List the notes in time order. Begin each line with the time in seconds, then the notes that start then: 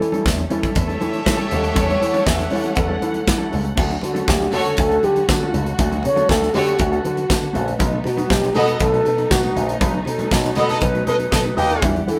Already playing: G3 A3 C#4 A4
0.01 E3, muted clean electric guitar stroke, closed hi-hat
0.12 G3 C#4 E4 A4, closed hi-hat, high conga
0.26 E2, muted clean electric guitar stroke, kick, snare, tambourine
0.38 muted clean electric guitar stroke, closed hi-hat, high conga
0.50 E3 G3 A3 C#4 E4 G4 A4 C#5 E5, closed hi-hat, muted conga
0.62 G3 C#4 E4 A4, kick, closed hi-hat
0.75 E2, muted clean electric guitar stroke, kick, closed hi-hat, muted conga
0.88 G3 C#4 E4 A4, closed hi-hat
1.00 E3, muted clean electric guitar stroke, closed hi-hat, muted conga, high conga
1.13 muted clean electric guitar stroke, closed hi-hat, high conga
1.26 E3, muted clean electric guitar stroke, kick, snare, tambourine, muted conga, high conga
1.37 G3 C#4 E4 A4, closed hi-hat
1.50 D#2 G3 C#4 E4 A4 F#5, closed hi-hat, muted conga, low conga
1.62 muted clean electric guitar stroke, closed hi-hat
1.74 E2 G3 C#4 E4 A4 C#5, kick, closed hi-hat, muted conga, low conga
1.87 muted clean electric guitar stroke, closed hi-hat, high conga
2.00 E3, muted clean electric guitar stroke, closed hi-hat
2.12 G3 C#4 E4 A4, closed hi-hat, high conga
2.25 E2 E5, muted clean electric guitar stroke, kick, snare, tambourine
2.38 muted clean electric guitar stroke, snare, closed hi-hat, high conga
2.50 E3 G3 C#4 E4 A4 C#5, open hi-hat, muted conga
2.63 G3 C#4 E4 A4, closed hi-hat
2.76 E2 A4, muted clean electric guitar stroke, kick, closed hi-hat, muted conga
2.88 G3 C#4 E4 A4
3.01 E3, muted clean electric guitar stroke, closed hi-hat, muted conga, high conga
3.14 muted clean electric guitar stroke, closed hi-hat, high conga
3.26 E3, muted clean electric guitar stroke, kick, snare, tambourine, high conga
3.38 G3 C#4 E4 A4
3.51 C#2 G3 C#4 E4 A4, open hi-hat, muted conga, low conga
3.63 muted clean electric guitar stroke, closed hi-hat
3.76 D2 D3 A3 C#4 F#4 A4, kick, crash, low conga
3.89 muted clean electric guitar stroke, closed hi-hat, high conga
4.01 D3 F#4, muted clean electric guitar stroke, closed hi-hat, muted conga
4.14 A3 C#4 F#4 A4, closed hi-hat, high conga
4.26 D2 G4, muted clean electric guitar stroke, kick, snare, tambourine
4.39 muted clean electric guitar stroke, snare, high conga
4.51 D3 A3 C#4 F#4 A4 C#5, open hi-hat, muted conga, low conga
4.64 A3 C#4 F#4 A4, closed hi-hat
4.77 D2 A4, muted clean electric guitar stroke, kick, closed hi-hat, muted conga
4.89 A3 C#4 F#4 A4, closed hi-hat
5.02 D3 G4, muted clean electric guitar stroke, closed hi-hat, muted conga, high conga
5.15 muted clean electric guitar stroke, closed hi-hat, high conga
5.27 D3 F#4, muted clean electric guitar stroke, kick, snare, tambourine, high conga
5.40 A3 C#4 F#4 A4
5.53 C#2 A3 C#4 F#4 A4, closed hi-hat, low conga
5.66 muted clean electric guitar stroke, closed hi-hat
5.78 D2 A3 B3 C#4 F#4 A4, kick, closed hi-hat, muted conga, low conga
5.91 muted clean electric guitar stroke, closed hi-hat, high conga
6.03 D3 C#5, muted clean electric guitar stroke, closed hi-hat, muted conga
6.16 A3 C#4 F#4 A4, closed hi-hat, high conga
6.29 D2 A4, muted clean electric guitar stroke, kick, snare, tambourine, muted conga
6.41 muted clean electric guitar stroke, snare, high conga
6.53 D3 A3 C#4 F#4 G4 A4 C#5, open hi-hat, low conga
6.66 A3 C#4 F#4 A4, closed hi-hat
6.78 D2 F#4, muted clean electric guitar stroke, kick, closed hi-hat, muted conga
6.92 A3 C#4 F#4 A4, closed hi-hat
7.04 D3 F#4, muted clean electric guitar stroke, closed hi-hat, muted conga, high conga
7.16 muted clean electric guitar stroke, closed hi-hat, high conga
7.30 D3, kick, snare, tambourine, muted conga, high conga
7.42 muted clean electric guitar stroke, closed hi-hat
7.53 A#1 A3 C#4 F#4 A4, closed hi-hat, muted conga, low conga
7.66 muted clean electric guitar stroke, closed hi-hat
7.78 B1 A3 D#4 F#4 B4, kick, closed hi-hat, muted conga, low conga
7.91 muted clean electric guitar stroke, high conga
8.04 B2 F#4, muted clean electric guitar stroke, closed hi-hat, muted conga
8.17 A3 D#4 F#4 B4, closed hi-hat, high conga
8.29 B1 G4, muted clean electric guitar stroke, kick, snare, tambourine, muted conga
8.42 muted clean electric guitar stroke, snare, closed hi-hat, high conga
8.54 B2 A3 B3 D#4 F#4 A4 B4 D#5, open hi-hat, muted conga, low conga
8.68 A3 D#4 F#4 B4, closed hi-hat
8.79 B1 A4, muted clean electric guitar stroke, kick, closed hi-hat
8.92 A3 D#4 F#4 B4, closed hi-hat
9.05 B2, muted clean electric guitar stroke, closed hi-hat, high conga
9.17 muted clean electric guitar stroke, closed hi-hat, high conga
9.30 B2 F#4, muted clean electric guitar stroke, kick, snare, tambourine, high conga
9.43 A3 D#4 F#4 B4, closed hi-hat
9.55 A#1 A3 D#4 F#4 B4, closed hi-hat, muted conga, low conga
9.68 muted clean electric guitar stroke, closed hi-hat
9.81 B1 A3 C#4 D#4 F#4 B4, kick, closed hi-hat, muted conga, low conga
9.94 muted clean electric guitar stroke, high conga
10.05 B2 A4, muted clean electric guitar stroke, closed hi-hat, muted conga
10.19 A3 D#4 F#4 B4, closed hi-hat, high conga
10.31 B1 F#4, muted clean electric guitar stroke, kick, snare, tambourine
10.43 muted clean electric guitar stroke, snare, closed hi-hat, high conga
10.55 B2 A3 B3 D#4 F#4 A4 B4 D#5, closed hi-hat, muted conga, low conga
10.69 A3 D#4 F#4 A4 B4 D#5, closed hi-hat
10.81 B1 B4, muted clean electric guitar stroke, kick, closed hi-hat, muted conga
10.94 A3 D#4 F#4 B4, closed hi-hat
11.07 B2 A4 B4 D#5, muted clean electric guitar stroke, closed hi-hat, high conga
11.20 muted clean electric guitar stroke, closed hi-hat, high conga
11.32 B2 A4 B4 D#5, muted clean electric guitar stroke, kick, snare, tambourine, high conga
11.44 A3 D#4 F#4 B4, closed hi-hat
11.57 D#2 A3 D#4 F#4 G4 B4 D#5, open hi-hat, muted conga, low conga
11.70 muted clean electric guitar stroke, closed hi-hat
11.82 E2 E3 G3 D4 F#4 G4 B4 F#5, kick, closed hi-hat, muted conga, low conga
11.94 muted clean electric guitar stroke, closed hi-hat, high conga
12.07 E3 A4, muted clean electric guitar stroke, closed hi-hat